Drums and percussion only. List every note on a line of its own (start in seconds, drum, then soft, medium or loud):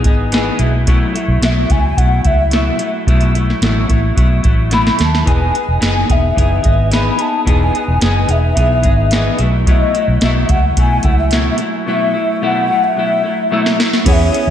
0.04 kick medium
0.04 closed hi-hat medium
0.32 snare medium
0.32 closed hi-hat medium
0.59 closed hi-hat medium
0.87 kick loud
0.87 closed hi-hat medium
1.16 closed hi-hat medium
1.42 snare medium
1.42 closed hi-hat medium
1.70 kick medium
1.70 closed hi-hat medium
1.98 kick medium
1.98 closed hi-hat loud
2.25 kick medium
2.25 closed hi-hat medium
2.51 snare medium
2.51 closed hi-hat medium
2.79 closed hi-hat medium
3.07 kick loud
3.07 closed hi-hat medium
3.21 closed hi-hat soft
3.35 closed hi-hat soft
3.50 snare soft
3.62 snare medium
3.62 closed hi-hat medium
3.90 kick medium
3.90 closed hi-hat medium
4.17 kick medium
4.17 closed hi-hat medium
4.44 kick medium
4.44 closed hi-hat medium
4.71 snare soft
4.71 closed hi-hat medium
4.87 snare medium
4.99 snare medium
4.99 closed hi-hat medium
5.15 snare medium
5.27 kick loud
5.27 closed hi-hat medium
5.55 closed hi-hat medium
5.82 snare loud
5.82 closed hi-hat medium
6.10 kick medium
6.10 closed hi-hat medium
6.37 kick medium
6.37 closed hi-hat medium
6.64 kick medium
6.64 closed hi-hat medium
6.92 snare medium
6.92 closed hi-hat medium
7.19 closed hi-hat medium
7.47 kick medium
7.47 closed hi-hat medium
7.75 closed hi-hat soft
8.01 snare loud
8.01 closed hi-hat medium
8.29 closed hi-hat medium
8.57 kick medium
8.57 closed hi-hat loud
8.83 kick medium
8.83 closed hi-hat medium
9.11 snare medium
9.11 closed hi-hat medium
9.39 closed hi-hat medium
9.67 kick loud
9.67 closed hi-hat medium
9.95 closed hi-hat medium
10.21 snare loud
10.21 closed hi-hat medium
10.49 kick medium
10.49 closed hi-hat medium
10.77 kick medium
10.77 closed hi-hat medium
11.03 kick medium
11.03 closed hi-hat medium
11.31 snare medium
11.31 closed hi-hat medium
11.58 closed hi-hat medium
13.66 snare medium
13.80 snare loud
13.93 snare medium
14.06 kick loud
14.06 closed hi-hat medium
14.06 crash medium
14.34 closed hi-hat medium